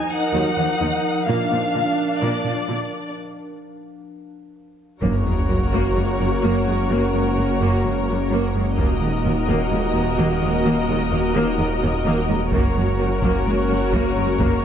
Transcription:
Already playing: ambient pad F3 D#4 A#4 D#5, viola section D#4, violin section G#5
0.12 violin section F#5
0.33 cello section D#2, viola section F#3
0.56 cello section D#2, viola section F3
0.80 cello section D#2, viola section D#3
1.27 cello section A#2, viola section A#3 D4, ambient pad D4 F5, violin section F5
1.51 cello section A#2, viola section F3
1.74 cello section A#2, viola section D3
2.20 cello section A#2, viola section A#3, violin section D5
2.44 cello section A#2, viola section F3
2.68 cello section A#2, viola section D3
5.01 detuned saw bass F#1, cello section F#2, viola section A#3 F#4, ambient pad A#3 C#4 A#4 F#5, violin section A#4 C#5, taiko, sub drop
5.25 cello section F#2, viola section G#3
5.48 cello section F#2, viola section A#3
5.72 cello section F#2, viola section A#3
5.95 cello section F#2, viola section G#3
6.19 cello section F#2, viola section A#3
6.43 cello section F#2, viola section A#3
6.67 cello section F#2, viola section G#3
6.90 cello section F#2, viola section A#3
7.13 cello section F#2, viola section G#3
7.37 cello section F#2, viola section A#3
7.61 cello section F#2, viola section A#3
7.84 cello section F#2, viola section G#3
8.08 cello section F#2, viola section A#3
8.30 cello section F#2, viola section A#3
8.54 cello section F#2, viola section G#3
8.77 detuned saw bass D#1, cello section D#2, ambient pad A#3 D#4 A#4 F#5, viola section A#3 F#4, violin section A#4 D#5, taiko
9.01 cello section D#2, viola section G#3
9.24 cello section D#2, viola section A#3
9.47 cello section D#2, viola section A#3, taiko
9.71 cello section D#2, viola section G#3
9.94 cello section D#2, viola section A#3
10.18 cello section D#2, viola section A#3
10.41 cello section D#2, viola section G#3
10.65 cello section D#2, viola section A#3
10.88 cello section D#2, viola section G#3
11.11 cello section D#2, viola section A#3
11.34 cello section D#2, viola section A#3
11.58 cello section D#2, viola section G#3
11.81 cello section D#2, viola section A#3
12.05 cello section D#2, viola section A#3
12.28 cello section D#2, viola section G#3
12.51 detuned saw bass F#1, cello section F#2, viola section A#3 F#4, ambient pad A#3 C#4 A#4 F#5, violin section A#4 C#5, taiko
12.76 cello section F#2, viola section G#3
12.99 cello section F#2, viola section A#3
13.22 cello section F#2, viola section A#3, taiko
13.46 cello section F#2, viola section G#3
13.69 cello section F#2, viola section A#3
13.93 cello section F#2, viola section A#3, taiko
14.17 cello section F#2, viola section G#3
14.40 cello section F#2, viola section A#3, taiko

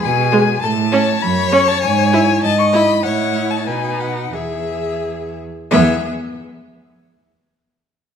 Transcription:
Already playing: violin G#4
0.02 cello B2, violin G#5
0.32 viola G#3
0.62 cello A2, violin A4 A5
0.92 viola C#4, violin C#5
1.22 cello F#2, violin B5
1.52 viola C#4, violin C#6
1.68 violin A5
1.82 cello G#2, violin G#5
2.13 viola E4
2.43 cello G#2, violin D#5 A5
2.59 violin C#6
2.73 viola E4, violin B5
3.03 cello A2, viola E4, violin C#5 F#5
3.51 violin A5
3.67 cello B2, viola D#4, violin B4 G#5
4.00 violin F#5
4.33 cello E2, viola G#4, violin G#4 E5
5.71 cello E2, viola B3, violin G#4 E5

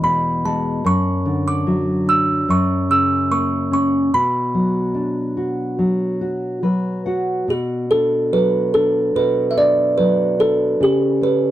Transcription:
Already playing: nylon-string guitar E2 G#3
0.03 nylon-string guitar B2, music box B5
0.45 nylon-string guitar G#3, music box A5
0.85 nylon-string guitar F#2, music box C#6
1.25 nylon-string guitar D3
1.48 music box D6
1.67 nylon-string guitar F#3
2.07 nylon-string guitar D4, music box E6
2.49 nylon-string guitar F#2, music box C#6
2.90 nylon-string guitar C#3, music box E6
3.31 nylon-string guitar A#3, music box C#6
3.71 nylon-string guitar C#4, music box C#6
4.14 nylon-string guitar B2, music box B5
4.54 nylon-string guitar F#3
4.95 nylon-string guitar D4
5.37 nylon-string guitar F#4
5.79 nylon-string guitar F#3
6.21 nylon-string guitar F#4
6.63 nylon-string guitar F#3 B4
7.06 nylon-string guitar F#4 F#5
7.48 nylon-string guitar B2, music box F#4
7.91 nylon-string guitar D4, music box A4
8.32 nylon-string guitar F#3, music box B4
8.74 nylon-string guitar D4, music box A4
9.15 nylon-string guitar B2, music box B4
9.51 music box E5
9.57 nylon-string guitar D4, music box D5
9.98 nylon-string guitar F#3, music box B4
10.39 nylon-string guitar D4, music box A4
10.80 nylon-string guitar C#3, music box G4
11.21 nylon-string guitar C#4, music box B4

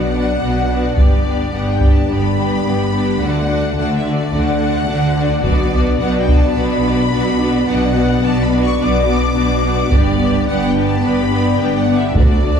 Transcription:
Already playing: double bass section B1, cello section B2, french horn section F#3 D4, viola section B3 D4, violin section F#4 D5 F#5
0.13 viola section B3 D4, violin section F#4 D5
0.40 double bass section B1, cello section B2, viola section B3 D4, violin section F#4 D5
0.68 viola section B3 D4, violin section F#4 D5
0.96 double bass section G1, cello section G2, french horn section G3 D4, viola section B3 D4, violin section G4 D5, taiko
1.25 viola section B3 D4, violin section G4 D5
1.53 double bass section G1, cello section G2, viola section B3 D4, violin section G4 D5 F#5
1.74 violin section G5
1.81 viola section B3 D4, violin section G4 D5, taiko
1.92 violin section A5
2.09 double bass section G1, cello section G2, viola section B3 D4, violin section G4 D5 B5
2.37 viola section B3 D4, violin section G4 D5
2.65 double bass section G1, cello section G2, viola section B3 D4, violin section G4 D5
2.92 viola section B3 D4, violin section G4 D5
3.20 double bass section D2, cello section D3, viola section A3 D4, french horn section A3, violin section F#4 D5 F#5
3.48 viola section A3 D4, violin section F#4 D5
3.76 double bass section D2, cello section D3, viola section A3 D4, violin section F#4 D5 F#5
3.95 violin section E5
4.04 viola section A3 D4, violin section F#4 D5
4.15 violin section D5
4.31 double bass section D2, cello section D3, viola section A3 D4, violin section F#4 D5 F#5
4.59 viola section A3 D4, violin section F#4 D5
4.87 double bass section D2, cello section D3, viola section A3 D4, violin section F#4 D5
5.15 viola section A3 D4, violin section F#4 D5
5.41 double bass section B1, cello section B2, french horn section B3 D4, viola section B3 D4, violin section F#4 D5, taiko
5.71 viola section B3 D4, violin section F#4 D5
5.99 double bass section B1, cello section B2, viola section B3 D4, violin section F#4 D5 F#5
6.19 violin section G5
6.28 viola section B3 D4, violin section F#4 D5, taiko
6.36 violin section A5
6.54 double bass section B1, cello section B2, viola section B3 D4, violin section F#4 D5 B5
6.83 viola section B3 D4, violin section F#4 D5
7.11 double bass section B1, cello section B2, viola section B3 D4, violin section F#4 D5
7.39 viola section B3 D4, violin section F#4 D5
7.66 double bass section B1, cello section B2, viola section B3 D4, violin section F#4 D5 F#5
7.94 viola section B3 D4, violin section F#4 D5
8.21 double bass section B1, cello section B2, viola section B3 D4, violin section F#4 D5 A5
8.44 violin section B5
8.50 viola section B3 D4, violin section F#4 D5
8.62 violin section C#6
8.78 double bass section B1, cello section B2, viola section B3 D4, violin section F#4 D5 D6
9.07 viola section B3 D4, violin section F#4 D5
9.35 double bass section B1, cello section B2, viola section B3 D4, violin section F#4 D5
9.63 viola section B3 D4, violin section F#4 D5
9.91 double bass section G1, cello section G2, french horn section B3 D4, viola section B3 D4, violin section G4 D5, taiko
10.19 viola section B3 D4, violin section G4 D5
10.48 double bass section G1, cello section G2, viola section B3 D4, violin section G4 D5 F#5
10.68 violin section G5
10.76 viola section B3 D4, violin section G4 D5
10.86 violin section A5
11.02 double bass section G1, cello section G2, viola section B3 D4, violin section G4 D5 B5
11.31 viola section B3 D4, violin section G4 D5
11.58 double bass section G1, cello section G2, viola section B3 D4, violin section G4 D5 G5
11.78 violin section F#5
11.88 viola section B3 D4, violin section G4 D5
11.97 violin section E5
12.15 double bass section D2, cello section D2, french horn section A3 F#4, viola section A3 D4, violin section F#4 D5, taiko
12.43 viola section A3 D4, violin section F#4 D5

